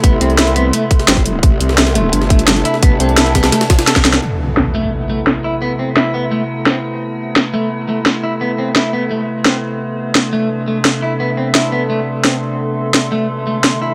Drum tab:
CC |----------------|----------------|----------------|x---------------|
HH |x-xxxxx-x-xxxxx-|x-x-xxx-x-xxxxx-|x-xxxxxxxxxxxxx-|----------------|
SD |----o------ooo--|---ooo---o--oo-o|----o-oooooooooo|----o-------o---|
BD |o---------o--o--|o---------o-----|o-----o---o--o--|----------------|

CC |----------------|----------------|----------------|----------------|
HH |----------------|----------------|----------------|----------------|
SD |----o-------o---|----o-------o---|----o-------o---|----o-------o---|
BD |----------------|----------------|----------------|----------------|

CC |----------------|----------------|
HH |----------------|----------------|
SD |----o-------o---|----o-------o---|
BD |----------------|----------------|